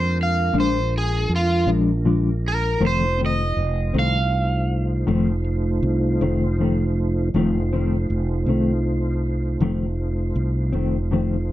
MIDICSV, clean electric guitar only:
0, 0, Header, 1, 2, 480
1, 0, Start_track
1, 0, Tempo, 756620
1, 1778, Time_signature, 12, 3, 24, 8
1, 7310, End_track
2, 0, Start_track
2, 0, Title_t, "Clean electric guitar"
2, 0, Program_c, 0, 27
2, 340, Note_on_c, 0, 46, 57
2, 340, Note_on_c, 0, 53, 54
2, 345, Note_on_c, 0, 56, 60
2, 348, Note_on_c, 0, 62, 73
2, 482, Note_off_c, 0, 46, 0
2, 482, Note_off_c, 0, 53, 0
2, 485, Note_off_c, 0, 56, 0
2, 486, Note_off_c, 0, 62, 0
2, 1062, Note_on_c, 0, 62, 50
2, 1071, Note_on_c, 0, 56, 39
2, 1073, Note_on_c, 0, 53, 36
2, 1204, Note_off_c, 0, 62, 0
2, 1208, Note_off_c, 0, 56, 0
2, 1209, Note_off_c, 0, 53, 0
2, 1302, Note_on_c, 0, 46, 47
2, 1304, Note_on_c, 0, 53, 48
2, 1309, Note_on_c, 0, 56, 50
2, 1312, Note_on_c, 0, 62, 46
2, 1444, Note_off_c, 0, 46, 0
2, 1445, Note_off_c, 0, 53, 0
2, 1447, Note_off_c, 0, 56, 0
2, 1449, Note_off_c, 0, 62, 0
2, 1779, Note_on_c, 0, 41, 68
2, 1783, Note_on_c, 0, 51, 61
2, 1786, Note_on_c, 0, 57, 74
2, 1787, Note_on_c, 0, 60, 73
2, 1922, Note_off_c, 0, 41, 0
2, 1924, Note_off_c, 0, 51, 0
2, 1926, Note_off_c, 0, 57, 0
2, 1926, Note_off_c, 0, 60, 0
2, 2021, Note_on_c, 0, 60, 49
2, 2031, Note_on_c, 0, 57, 39
2, 2036, Note_on_c, 0, 51, 38
2, 2163, Note_off_c, 0, 60, 0
2, 2168, Note_off_c, 0, 57, 0
2, 2171, Note_off_c, 0, 51, 0
2, 2495, Note_on_c, 0, 60, 48
2, 2503, Note_on_c, 0, 57, 39
2, 2509, Note_on_c, 0, 51, 35
2, 2640, Note_off_c, 0, 60, 0
2, 2644, Note_off_c, 0, 57, 0
2, 2647, Note_off_c, 0, 51, 0
2, 3215, Note_on_c, 0, 41, 68
2, 3216, Note_on_c, 0, 51, 71
2, 3221, Note_on_c, 0, 57, 82
2, 3227, Note_on_c, 0, 60, 76
2, 3360, Note_off_c, 0, 41, 0
2, 3361, Note_off_c, 0, 51, 0
2, 3363, Note_off_c, 0, 57, 0
2, 3366, Note_off_c, 0, 60, 0
2, 3941, Note_on_c, 0, 60, 51
2, 3947, Note_on_c, 0, 57, 45
2, 3952, Note_on_c, 0, 51, 48
2, 4083, Note_off_c, 0, 60, 0
2, 4086, Note_off_c, 0, 57, 0
2, 4089, Note_off_c, 0, 51, 0
2, 4182, Note_on_c, 0, 41, 40
2, 4189, Note_on_c, 0, 51, 47
2, 4193, Note_on_c, 0, 57, 46
2, 4195, Note_on_c, 0, 60, 52
2, 4323, Note_off_c, 0, 41, 0
2, 4327, Note_off_c, 0, 51, 0
2, 4329, Note_off_c, 0, 57, 0
2, 4330, Note_off_c, 0, 60, 0
2, 4661, Note_on_c, 0, 41, 78
2, 4668, Note_on_c, 0, 57, 88
2, 4669, Note_on_c, 0, 51, 84
2, 4671, Note_on_c, 0, 60, 82
2, 4803, Note_off_c, 0, 41, 0
2, 4806, Note_off_c, 0, 57, 0
2, 4807, Note_off_c, 0, 51, 0
2, 4808, Note_off_c, 0, 60, 0
2, 4903, Note_on_c, 0, 60, 57
2, 4911, Note_on_c, 0, 57, 46
2, 4917, Note_on_c, 0, 51, 39
2, 5043, Note_off_c, 0, 60, 0
2, 5048, Note_off_c, 0, 57, 0
2, 5051, Note_off_c, 0, 51, 0
2, 5380, Note_on_c, 0, 60, 42
2, 5390, Note_on_c, 0, 57, 47
2, 5394, Note_on_c, 0, 51, 41
2, 5521, Note_off_c, 0, 60, 0
2, 5526, Note_off_c, 0, 57, 0
2, 5529, Note_off_c, 0, 51, 0
2, 6099, Note_on_c, 0, 41, 66
2, 6102, Note_on_c, 0, 51, 79
2, 6106, Note_on_c, 0, 60, 81
2, 6107, Note_on_c, 0, 57, 71
2, 6240, Note_off_c, 0, 41, 0
2, 6242, Note_off_c, 0, 51, 0
2, 6244, Note_off_c, 0, 57, 0
2, 6244, Note_off_c, 0, 60, 0
2, 6804, Note_on_c, 0, 60, 52
2, 6816, Note_on_c, 0, 57, 42
2, 6822, Note_on_c, 0, 51, 41
2, 6952, Note_off_c, 0, 60, 0
2, 6958, Note_off_c, 0, 57, 0
2, 6961, Note_off_c, 0, 51, 0
2, 7049, Note_on_c, 0, 41, 48
2, 7055, Note_on_c, 0, 51, 52
2, 7059, Note_on_c, 0, 57, 43
2, 7061, Note_on_c, 0, 60, 51
2, 7195, Note_off_c, 0, 41, 0
2, 7197, Note_off_c, 0, 51, 0
2, 7199, Note_off_c, 0, 57, 0
2, 7200, Note_off_c, 0, 60, 0
2, 7310, End_track
0, 0, End_of_file